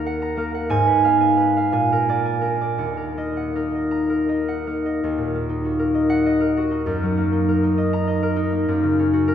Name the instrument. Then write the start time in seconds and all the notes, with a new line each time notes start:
harp
Already playing: D#2 A#3 A#4 A#5
0.06 F#5
0.22 A#5
0.37 A#3 A#4
0.55 F#5
0.69 G#2 G#5
0.87 B4
1.04 B3 F5
1.21 G#5
1.37 B4
1.57 F5
1.72 A#2 G#5
1.92 A#4
2.09 A#3 D5
2.25 G#5
2.42 D4 A#4
2.61 D5
2.78 D#2 F#5
2.97 A#4
3.17 A#3 D#5
3.37 F#5
3.56 D#4 A#4
3.75 D#5
3.91 A#5
4.10 A#4
4.29 D#4 D#5
4.48 F#5
4.67 A#3 A#4
4.86 D#5
5.04 D#2
5.18 A#2
5.35 A#3
5.49 D#4
5.65 F#4
5.79 A#4
5.95 D#5
6.10 F#5
6.26 D#5
6.41 A#4
6.57 F#4
6.71 D#4
6.86 F#2
7.03 F#3
7.17 A#3
7.32 D#4
7.49 A#4
7.63 D#4
7.78 D#5
7.93 A#5
8.07 D#5
8.23 A#4
8.36 D#4
8.52 A#3
8.68 F#2
8.83 C#3
8.99 C#4
9.13 F#4
9.28 A#4